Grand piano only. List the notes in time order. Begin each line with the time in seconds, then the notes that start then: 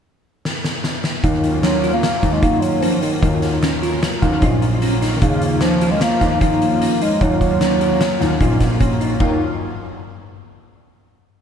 1.24 D#2
2.23 D#2
2.43 D#3
3.22 D#2
4.22 D#2
4.42 A#1
5.22 D#2
6.21 D#2
6.41 D#3
7.21 D#2
8.21 D#2
8.41 A#1
9.20 D#2